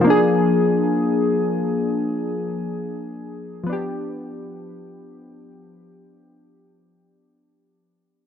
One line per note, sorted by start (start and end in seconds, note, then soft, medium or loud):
0.01 3.61 F3 medium
0.01 3.63 A#3 medium
0.07 3.64 D4 medium
0.07 3.66 G#4 medium
3.64 7.75 F3 medium
3.64 7.77 B3 medium
3.70 7.78 D4 medium
3.70 7.80 G4 medium